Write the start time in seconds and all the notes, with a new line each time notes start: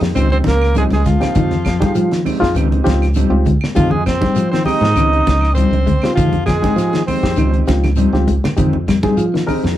Already playing: G#3 D#4 G4
0.01 F2 F3, snare
0.15 C#2 D#3 F3 C4 D#4 G4 C5, closed hi-hat, claves, shekere
0.30 C4 D#4 G4 C5, closed hi-hat, high conga
0.44 C#2 F3 A#3 A#4, kick, snare, closed hi-hat, high conga, shekere
0.62 snare, claves
0.75 F3 G3 C4 D#4 G4 G#4, closed hi-hat, high conga, shekere
0.79 G#3
0.91 C#2 G#3 G#4, snare, closed hi-hat, high conga
1.05 G#3 F4, kick, snare, closed hi-hat, low conga, shekere
1.10 F3
1.20 C4 D#4 F4 G4, snare, closed hi-hat, high conga, claves
1.35 F2 D#3 G#3 C4 D#4 G4, kick, closed hi-hat, low conga, shekere
1.51 snare, closed hi-hat, high conga
1.65 F3, kick, snare, closed hi-hat, claves, shekere
1.80 G3 G#3 D#4 G4, muted clean electric guitar stroke, kick, snare, closed hi-hat, high conga
1.95 F3, closed hi-hat, shekere
2.11 D#3, snare, closed hi-hat
2.24 G#3 C4 D#4 G4, open hi-hat, high conga, claves, shekere
2.40 F2 F3 G#3 D#4 F4, kick, snare
2.55 C#2 D#3 F3 C4 D#4 G4, closed hi-hat, claves, shekere
2.70 C4 D#4 G4, closed hi-hat, high conga
2.84 C#2 F3 C4 D#4 F4 G4, kick, snare, closed hi-hat, high conga, shekere
3.02 snare, closed hi-hat, claves
3.14 F3 G3 C4 D#4 G4, closed hi-hat, high conga, shekere
3.30 C#2 C4 D#4 F4 G4
3.45 G#3, kick, closed hi-hat, low conga, shekere
3.61 snare, claves
3.74 F2 D#3 F3 G#3 C4 D#4 F4 G4, kick, closed hi-hat, low conga, shekere
3.91 G#3 G#4, high conga
4.06 F3 C4 C5, kick, snare, closed hi-hat, claves, shekere
4.20 G3 G#3 C4 D#4 G4, kick, snare, high conga
4.35 F3, closed hi-hat, shekere
4.51 D#3 C4 C5, snare, closed hi-hat
4.65 G#3 C4 D#4 G4 D#5, open hi-hat, high conga, claves, shekere
4.81 G#2 F3, snare
4.96 C#2 D#3 F3 C4 D#4 G4, closed hi-hat, claves, shekere
5.13 C4 D#4 G4, closed hi-hat
5.26 C#2 F3, kick, snare, closed hi-hat, high conga, shekere
5.41 snare, claves
5.53 F3 G3 C4 C5, shekere
5.58 C4 D#4 G4, closed hi-hat, high conga
5.71 C#2, closed hi-hat, high conga
5.86 G#3, kick, closed hi-hat, low conga, shekere
6.02 C4 D#4 F4 G4, snare, closed hi-hat, claves
6.15 F2 D#3 F3 G#3 D#4 F4 G4, muted clean electric guitar stroke, kick, closed hi-hat, low conga, shekere
6.33 closed hi-hat, high conga
6.46 F3 G#3 G#4, kick, snare, closed hi-hat, low conga, claves, shekere
6.62 G#3 C4 D#4 G4, kick, snare, closed hi-hat, high conga
6.76 F3, snare, closed hi-hat, shekere
6.93 D#3, snare, closed hi-hat
7.06 G#3 C4 D#4 G4 C5, open hi-hat, high conga, claves, shekere
7.23 F2 F3 G#3 D#4 G4, kick, snare
7.36 C#2 D#3 F3 C4 D#4 G4, closed hi-hat, claves, shekere
7.53 C4 D#4 G4, closed hi-hat
7.67 C#2 F3 C4 D#4 F4 G4, kick, snare, closed hi-hat, high conga, shekere
7.84 snare, closed hi-hat, high conga, claves
7.96 F3 G3 C4 D#4 G4, closed hi-hat, shekere
8.13 C#2 C4 D#4 F4 G4, snare, high conga
8.27 G#3, kick, closed hi-hat, shekere
8.44 snare, low conga, claves
8.56 F2 D#3 G#3 C4 D#4 G4, kick, closed hi-hat, low conga, shekere
8.73 high conga
8.88 G3, kick, snare, closed hi-hat, claves, shekere
9.03 G3 G#3 C4 D#4 G4 G#4, kick, snare, high conga
9.17 F3, closed hi-hat, shekere
9.34 D#3, snare, closed hi-hat
9.47 G#3 C4 D#4 G4 A#4, open hi-hat, high conga, claves, shekere
9.63 F2 F3, snare